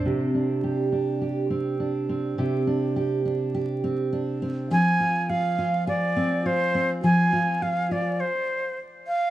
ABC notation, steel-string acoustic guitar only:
X:1
M:4/4
L:1/8
Q:"Swing 16ths" 1/4=103
K:Flyd
V:1 name="Steel-string acoustic guitar"
[C,G] D G D G C D C | [C,G] D G D G C D C | [F,_A] F A F A C F C | [F,_A] F A F z4 |]